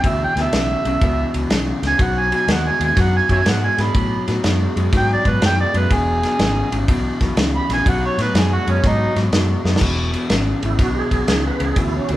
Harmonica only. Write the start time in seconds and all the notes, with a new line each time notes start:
0.07 E5
0.24 G5
0.40 E5
1.87 G#5
2.01 F#5
2.19 G#5
2.35 G#5
2.52 F#5
2.68 G#5
2.85 G#5
3.00 F#5
3.17 G#5
3.32 C#5 E5 G#5
3.50 F#5
3.66 G#5
3.81 B5
4.97 G5
5.13 D5
5.29 B4
5.45 G5
5.61 D5
5.77 B4
5.93 G#4
7.57 B5
7.73 G#5
7.88 F#5
8.06 C#5
8.22 B4
8.38 G#4
8.53 F#4
8.71 C#4
8.88 D#4